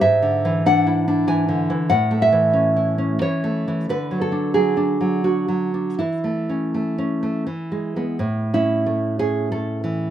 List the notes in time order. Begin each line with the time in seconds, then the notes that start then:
0.01 G#2 E5
0.22 D3
0.45 E3
0.66 D4 F#5
0.87 E4
1.08 D4
1.27 E3 G#5
1.49 D3
1.70 E3
1.90 A2 F#5
2.11 A3
2.22 E5
2.32 E3
2.53 C#4
2.76 E4
2.98 C#4
3.21 E3 C#5
3.44 A3
3.68 E3
3.89 D3 B4
4.11 F#3
4.21 A4
4.32 D4
4.54 F#3 G#4
4.77 D4
5.01 F#3
5.24 D4 F#4
5.48 F#3
5.74 D4
5.99 E3 E4
6.24 A3
6.49 C#4
6.74 A3
6.98 C#4
7.23 A3
7.47 E3
7.72 G#3
7.96 G#3 B3
8.19 A2
8.54 C#4 E4
8.86 A3
9.19 C#4 G#4
9.52 A3 A4
9.84 E3